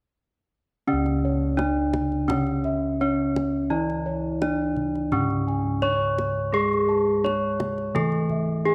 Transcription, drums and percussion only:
1.06 kendang slap
1.59 kendang slap, kendang high
1.94 kendang slap, kendang high, kendang low
2.12 kendang slap
2.30 kendang slap, kendang high, kendang low
2.47 kendang slap
2.64 kendang slap, kendang low
3.36 kendang slap, kendang high, kendang low
3.90 kendang slap
4.42 kendang slap, kendang high
4.76 kendang slap, kendang low
4.95 kendang slap
5.12 kendang slap, kendang low
5.30 kendang slap
5.48 kendang slap
5.83 kendang low
6.18 kendang slap, kendang high
6.73 kendang slap
7.26 kendang slap, kendang high
7.60 kendang slap, kendang high, kendang low
7.78 kendang slap
7.96 kendang slap, kendang high, kendang low
8.12 kendang slap
8.29 kendang slap, kendang low

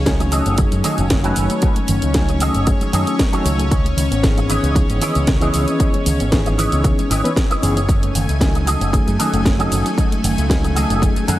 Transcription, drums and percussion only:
0.06 kick, snare, closed hi-hat, shaker
0.20 closed hi-hat, shaker
0.32 open hi-hat, shaker
0.46 closed hi-hat, shaker
0.58 kick, closed hi-hat, shaker
0.72 closed hi-hat, shaker
0.84 open hi-hat, shaker
0.98 closed hi-hat, shaker
1.10 kick, snare, closed hi-hat, shaker
1.24 closed hi-hat, shaker
1.36 open hi-hat, shaker
1.50 closed hi-hat, shaker
1.62 kick, closed hi-hat, shaker
1.76 closed hi-hat
1.88 open hi-hat, shaker
2.02 closed hi-hat, shaker
2.14 kick, snare, closed hi-hat, shaker
2.29 closed hi-hat, shaker
2.40 open hi-hat, shaker
2.55 closed hi-hat, shaker
2.67 kick, closed hi-hat, shaker
2.81 closed hi-hat, shaker
2.93 open hi-hat, shaker
3.07 closed hi-hat, shaker
3.19 kick, snare, closed hi-hat, shaker
3.33 closed hi-hat, shaker
3.46 open hi-hat, shaker
3.60 closed hi-hat, shaker
3.71 kick, closed hi-hat, shaker
3.86 closed hi-hat
3.98 open hi-hat, shaker
4.12 closed hi-hat, shaker
4.23 kick, snare, closed hi-hat, shaker
4.38 closed hi-hat, shaker
4.50 open hi-hat, shaker
4.64 closed hi-hat, shaker
4.76 kick, closed hi-hat, shaker
4.90 closed hi-hat, shaker
5.01 open hi-hat, shaker
5.15 closed hi-hat, shaker
5.27 kick, snare, closed hi-hat, shaker
5.41 closed hi-hat, shaker
5.54 open hi-hat, shaker
5.68 closed hi-hat, shaker
5.80 kick, closed hi-hat, shaker
5.94 closed hi-hat
6.06 open hi-hat, shaker
6.20 closed hi-hat, shaker
6.32 kick, snare, closed hi-hat, shaker
6.46 closed hi-hat, shaker
6.59 open hi-hat, shaker
6.72 closed hi-hat, shaker
6.84 kick, closed hi-hat, shaker
6.99 closed hi-hat, shaker
7.11 open hi-hat, shaker
7.25 closed hi-hat, shaker
7.36 kick, snare, closed hi-hat, shaker
7.51 closed hi-hat, shaker
7.63 open hi-hat, shaker
7.77 closed hi-hat, shaker
7.89 kick, closed hi-hat, shaker
8.03 closed hi-hat
8.15 open hi-hat, shaker
8.29 closed hi-hat, shaker
8.41 kick, snare, closed hi-hat, shaker
8.55 closed hi-hat, shaker
8.67 open hi-hat, shaker
8.81 closed hi-hat, shaker
8.93 kick, closed hi-hat, shaker
9.08 closed hi-hat, shaker
9.20 open hi-hat, shaker
9.34 closed hi-hat, shaker
9.45 kick, snare, closed hi-hat, shaker
9.60 closed hi-hat, shaker
9.72 open hi-hat, shaker
9.86 closed hi-hat, shaker
9.98 kick, closed hi-hat, shaker
10.12 closed hi-hat
10.24 open hi-hat, shaker
10.38 closed hi-hat, shaker
10.50 kick, snare, closed hi-hat, shaker
10.64 closed hi-hat, shaker
10.77 open hi-hat, shaker
10.90 closed hi-hat, shaker
11.02 kick, closed hi-hat, shaker
11.16 closed hi-hat, shaker
11.28 open hi-hat, shaker

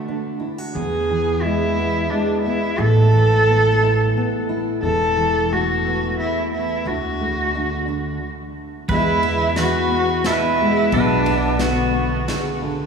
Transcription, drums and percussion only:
8.88 kick, ride
9.23 ride
9.56 snare, ride
10.24 snare, ride
10.92 kick, ride
11.26 ride
11.59 snare, ride
12.28 snare, ride

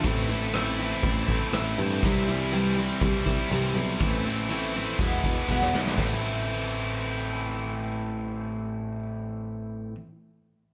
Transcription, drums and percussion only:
0.04 kick, open hi-hat
0.29 open hi-hat
0.54 cross-stick, open hi-hat
0.79 open hi-hat
1.03 kick, open hi-hat
1.28 kick, open hi-hat
1.53 cross-stick, open hi-hat
1.78 open hi-hat
2.03 kick, open hi-hat
2.28 open hi-hat
2.53 open hi-hat
2.77 open hi-hat
3.01 kick, open hi-hat
3.26 kick, open hi-hat
3.51 open hi-hat
3.76 open hi-hat
4.01 kick, open hi-hat
4.26 open hi-hat
4.50 open hi-hat
4.74 open hi-hat
4.99 kick, open hi-hat
5.24 kick, open hi-hat
5.49 kick
5.62 snare
5.74 snare
5.87 snare
5.98 kick, snare

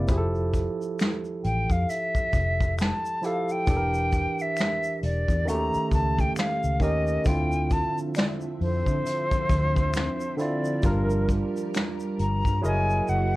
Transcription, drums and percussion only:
0.08 kick, closed hi-hat, shaker
0.35 shaker
0.54 kick, closed hi-hat, shaker
0.82 shaker
0.99 finger snap, snare, closed hi-hat, shaker
1.03 finger snap
1.25 shaker
1.44 closed hi-hat
1.70 kick, closed hi-hat, shaker
1.90 closed hi-hat, shaker
2.15 kick, shaker
2.33 kick, closed hi-hat, shaker
2.60 kick, shaker
2.78 finger snap, snare, closed hi-hat, shaker
2.82 finger snap
3.05 shaker
3.23 closed hi-hat, shaker
3.49 shaker
3.67 kick, closed hi-hat, shaker
3.94 shaker
4.12 kick, closed hi-hat, shaker
4.39 shaker
4.57 finger snap, snare, closed hi-hat, shaker
4.61 finger snap
4.83 shaker
5.03 closed hi-hat
5.28 kick, closed hi-hat, shaker
5.48 closed hi-hat, shaker
5.74 shaker
5.91 kick, closed hi-hat, shaker
6.19 kick, closed hi-hat, shaker
6.36 finger snap, snare, closed hi-hat, shaker
6.40 finger snap
6.64 shaker
6.80 kick, closed hi-hat, shaker
7.07 shaker
7.25 kick, closed hi-hat, shaker
7.52 shaker
7.70 kick, closed hi-hat, shaker
7.98 shaker
8.15 finger snap, snare, closed hi-hat, shaker
8.19 finger snap
8.41 shaker
8.61 open hi-hat
8.86 kick, closed hi-hat, shaker
9.06 closed hi-hat, shaker
9.31 kick, shaker
9.49 kick, closed hi-hat, shaker
9.77 kick, shaker
9.94 finger snap, snare, closed hi-hat, shaker
9.98 finger snap
10.21 shaker
10.39 closed hi-hat, shaker
10.65 shaker
10.83 kick, closed hi-hat, shaker
11.10 shaker
11.29 kick, closed hi-hat, shaker
11.57 shaker
11.74 finger snap, snare, closed hi-hat, shaker
11.77 finger snap
12.00 shaker
12.19 closed hi-hat
12.45 kick, closed hi-hat, shaker
12.64 shaker
12.90 shaker
13.08 shaker

